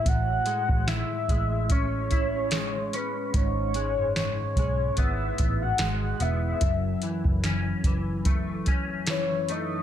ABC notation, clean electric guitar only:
X:1
M:4/4
L:1/8
Q:"Swing 16ths" 1/4=73
K:E
V:1 name="Clean electric guitar" clef=bass
A,, G, E G, C E G, C | G,, G,2 G, B,2 G, B, | F,, E, C E, A, C E, A, |]